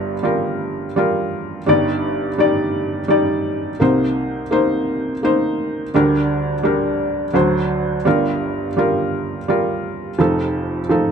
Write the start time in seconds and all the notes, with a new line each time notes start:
Already playing: G1 G2 G3 F4 A#4
0.23 G3 F4 A#4
0.96 G3 F4 A#4
1.66 G1 G2 G3 D#4 D5
2.38 G3 D#4 D5
3.08 G3 D#4 D5
3.80 C2 C3 A#3 D#4 C5
4.51 A#3 D#4 C5
5.23 A#3 D#4 C5
5.94 D2 D3 G3 D4 A#4
6.63 G3 D4 A#4
7.33 D2 D3 F#3 D4 C5
8.05 G1 G2 G3 F4 A#4
8.77 G3 F4 A#4
9.48 G3 F4 A#4
10.19 F1 F2 F3 D#4 A4
10.89 F3 D#4 A4